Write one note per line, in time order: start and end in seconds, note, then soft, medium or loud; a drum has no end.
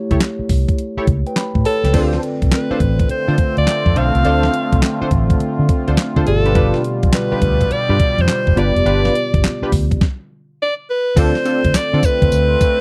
0.00 1.61 A3 medium
0.00 1.61 E4 medium
0.00 1.61 G4 medium
0.00 1.05 C#5 medium
0.11 0.19 C#2 medium
0.11 0.19 E4 medium
0.11 0.19 G4 medium
0.11 0.19 A4 medium
0.11 0.20 C#5 medium
0.11 kick medium
0.11 closed hi-hat soft
0.21 snare loud
0.21 clap medium
0.21 closed hi-hat medium
0.39 muted fingered electric bass stroke soft
0.49 0.64 C2 medium
0.49 kick loud
0.49 open hi-hat medium
0.68 kick loud
0.68 closed hi-hat medium
0.79 closed hi-hat medium
0.97 1.06 E4 medium
0.97 1.06 G4 medium
0.97 1.06 A4 medium
0.97 1.06 C#5 medium
0.97 muted fingered electric bass stroke soft
1.07 1.22 C#2 medium
1.07 kick medium
1.07 closed hi-hat medium
1.27 1.36 B4 medium
1.27 1.36 G5 medium
1.27 closed hi-hat soft
1.36 1.64 B5 medium
1.36 snare loud
1.36 clap medium
1.36 closed hi-hat medium
1.55 1.63 A2 medium
1.55 kick medium
1.65 2.19 A4 loud
1.65 1.83 C#5 medium
1.65 1.83 A5 medium
1.65 open hi-hat medium
1.84 1.91 C#2 medium
1.84 2.12 B4 medium
1.84 2.12 G5 medium
1.84 snare medium
1.84 closed hi-hat medium
1.93 2.16 D2 loud
1.93 9.98 D3 medium
1.93 6.23 A3 medium
1.93 4.20 C4 medium
1.93 6.22 C4 medium
1.93 2.21 D4 loud
1.93 2.21 F4 medium
1.93 9.97 F4 medium
1.93 4.21 F4 medium
1.93 2.21 A4 medium
1.93 4.21 A4 medium
1.93 2.21 C5 loud
1.93 4.21 D5 medium
1.93 kick loud
1.93 closed hi-hat medium
1.93 crash loud
2.13 snare medium
2.23 closed hi-hat medium
2.42 2.49 C2 medium
2.42 kick loud
2.42 closed hi-hat soft
2.52 3.06 B4 medium
2.52 snare loud
2.52 clap medium
2.52 closed hi-hat medium
2.70 2.79 D4 medium
2.70 2.79 F4 medium
2.70 2.79 A4 medium
2.70 2.79 C5 medium
2.70 muted fingered electric bass stroke soft
2.80 3.03 A1 medium
2.80 kick medium
2.80 closed hi-hat medium
2.99 kick loud
2.99 closed hi-hat soft
3.09 3.54 C5 loud
3.09 muted fingered electric bass stroke soft
3.09 closed hi-hat medium
3.28 3.36 D3 loud
3.28 3.36 D4 medium
3.28 3.37 F4 medium
3.28 3.37 A4 medium
3.28 3.37 C5 medium
3.38 kick loud
3.38 closed hi-hat medium
3.57 3.65 D2 medium
3.57 3.99 D5 loud
3.57 closed hi-hat soft
3.67 snare loud
3.67 clap medium
3.67 closed hi-hat medium
3.86 3.93 F2 medium
3.86 kick medium
3.96 4.11 B1 medium
3.96 4.12 D4 medium
3.96 4.13 F4 medium
3.96 4.13 A4 medium
3.96 4.13 C5 medium
3.96 5.12 F5 loud
3.96 closed hi-hat medium
4.15 4.23 C2 medium
4.15 closed hi-hat medium
4.24 4.47 D2 loud
4.24 6.22 C4 medium
4.24 4.52 D4 medium
4.24 6.22 F4 medium
4.24 4.52 F4 medium
4.24 4.52 A4 medium
4.24 6.23 A4 medium
4.24 4.52 C5 loud
4.24 6.23 F5 medium
4.24 closed hi-hat medium
4.43 snare medium
4.54 closed hi-hat medium
4.72 4.80 C2 medium
4.72 kick medium
4.72 closed hi-hat soft
4.82 snare loud
4.82 clap medium
4.82 closed hi-hat medium
5.01 5.10 D4 medium
5.01 5.10 F4 medium
5.01 5.10 A4 medium
5.01 5.10 C5 medium
5.01 muted fingered electric bass stroke soft
5.11 5.33 A1 medium
5.11 kick medium
5.11 closed hi-hat medium
5.30 kick loud
5.30 closed hi-hat soft
5.40 muted fingered electric bass stroke soft
5.40 closed hi-hat medium
5.59 5.67 D3 loud
5.69 kick loud
5.69 closed hi-hat medium
5.87 5.96 D2 medium
5.87 5.96 D4 medium
5.87 5.96 F4 medium
5.87 5.96 A4 medium
5.87 5.96 C5 medium
5.87 closed hi-hat soft
5.97 snare loud
5.97 clap medium
5.97 closed hi-hat medium
6.16 6.24 D3 loud
6.16 6.25 D4 medium
6.16 6.25 F4 medium
6.16 6.25 A4 medium
6.16 6.25 C5 medium
6.16 kick medium
6.25 6.71 G1 medium
6.25 8.53 B2 medium
6.25 9.98 B2 medium
6.25 9.98 G3 medium
6.25 8.53 F4 medium
6.25 8.54 G4 medium
6.25 6.80 A4 loud
6.25 8.54 D5 medium
6.25 closed hi-hat medium
6.45 6.54 D4 medium
6.45 6.54 F4 medium
6.45 6.54 G4 medium
6.45 6.54 B4 medium
6.45 closed hi-hat medium
6.55 6.82 D4 loud
6.55 6.82 F4 medium
6.55 6.82 G4 medium
6.55 6.83 B4 loud
6.55 kick loud
6.55 closed hi-hat medium
6.74 snare medium
6.84 closed hi-hat medium
7.03 7.11 B1 loud
7.03 kick loud
7.03 closed hi-hat soft
7.13 7.74 B4 loud
7.13 snare loud
7.13 clap medium
7.13 closed hi-hat medium
7.31 7.40 D4 medium
7.31 7.40 F4 medium
7.31 7.40 G4 medium
7.31 7.41 B4 medium
7.31 muted fingered electric bass stroke soft
7.42 7.64 D2 medium
7.42 kick loud
7.42 closed hi-hat medium
7.61 kick medium
7.61 closed hi-hat medium
7.70 8.23 D5 loud
7.70 muted fingered electric bass stroke soft
7.70 closed hi-hat medium
7.89 7.97 G2 loud
7.89 7.98 D4 medium
7.89 7.98 F4 medium
7.89 7.98 G4 medium
7.89 7.98 B4 medium
8.00 kick loud
8.00 closed hi-hat medium
8.18 8.26 F2 medium
8.18 8.60 C5 loud
8.18 closed hi-hat soft
8.28 snare loud
8.28 clap medium
8.28 closed hi-hat medium
8.47 8.55 F1 medium
8.47 kick medium
8.56 8.72 G1 medium
8.56 9.98 B3 medium
8.56 8.74 D4 medium
8.56 8.74 F4 medium
8.56 9.99 F4 medium
8.56 8.74 G4 medium
8.56 9.99 G4 medium
8.56 8.74 B4 medium
8.56 9.99 D5 medium
8.56 9.73 D5 loud
8.56 closed hi-hat medium
8.76 8.84 F1 medium
8.76 closed hi-hat medium
8.85 9.08 G1 loud
8.85 9.13 D4 loud
8.85 9.13 F4 medium
8.85 9.13 G4 medium
8.85 9.13 B4 loud
8.85 closed hi-hat medium
9.05 snare medium
9.15 closed hi-hat medium
9.34 9.41 G1 medium
9.34 kick loud
9.34 closed hi-hat soft
9.44 snare loud
9.44 clap medium
9.44 closed hi-hat medium
9.62 9.71 D4 medium
9.62 9.71 F4 medium
9.62 9.71 G4 medium
9.62 9.72 B4 medium
9.62 muted fingered electric bass stroke soft
9.72 9.95 D2 medium
9.72 kick medium
9.72 open hi-hat medium
9.91 kick medium
9.91 closed hi-hat medium
10.01 kick loud
10.01 snare medium
10.62 10.75 D5 loud
10.90 11.21 B4 loud
11.16 11.31 D2 loud
11.16 12.81 D3 medium
11.16 12.81 A3 medium
11.16 12.81 C4 medium
11.16 11.33 C4 medium
11.16 12.81 C4 medium
11.16 11.33 D4 medium
11.16 12.81 F4 medium
11.16 11.33 F4 medium
11.16 12.81 F4 medium
11.16 11.33 A4 loud
11.16 12.81 A4 medium
11.16 11.78 C5 loud
11.16 12.81 D5 medium
11.16 kick loud
11.16 closed hi-hat medium
11.16 crash loud
11.16 tambourine medium
11.35 snare medium
11.45 11.62 C4 medium
11.45 11.62 D4 medium
11.45 11.62 F4 medium
11.45 11.62 A4 medium
11.45 closed hi-hat medium
11.45 tambourine medium
11.64 11.72 D2 medium
11.64 kick loud
11.64 closed hi-hat soft
11.74 12.07 D5 loud
11.74 muted fingered electric bass stroke soft
11.74 snare loud
11.74 clap medium
11.74 closed hi-hat medium
11.74 tambourine loud
11.93 12.01 D3 medium
11.93 12.02 C4 medium
11.93 12.02 D4 medium
11.93 12.02 F4 medium
11.93 12.02 A4 medium
12.03 12.81 B4 loud
12.03 kick loud
12.03 closed hi-hat medium
12.03 tambourine medium
12.22 12.30 D2 medium
12.22 kick loud
12.22 closed hi-hat soft
12.32 12.55 D2 medium
12.32 closed hi-hat medium
12.32 tambourine medium
12.61 kick loud
12.61 closed hi-hat medium
12.61 tambourine medium